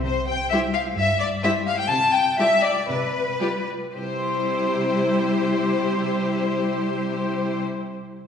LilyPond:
<<
  \new Staff \with { instrumentName = "Violin section" } { \time 4/4 \key c \major \tempo 4 = 111 c''8 g''8 e''8 f''8 e''8 d''8 e''8 f''16 g''16 | a''8 g''8 e''8 d''8 b'4. r8 | c''1~ | c''1 | }
  \new Staff \with { instrumentName = "Violin section" } { \time 4/4 \key c \major r4 <g' c''>4 r4 <g' c''>4 | r4 <g' d''>4 r4 <g' d''>4 | <g' c''>1~ | <g' c''>1 | }
  \new Staff \with { instrumentName = "Viola section" } { \time 4/4 \key c \major r4 <g e'>4 r4 <g e'>4 | r4 <g f'>4 r4 <g f'>4 | <g e'>1~ | <g e'>1 | }
  \new Staff \with { instrumentName = "Cello section" } { \clef bass \time 4/4 \key c \major c4 r4 g,4 r4 | c4 r4 c4 r4 | c1~ | c1 | }
>>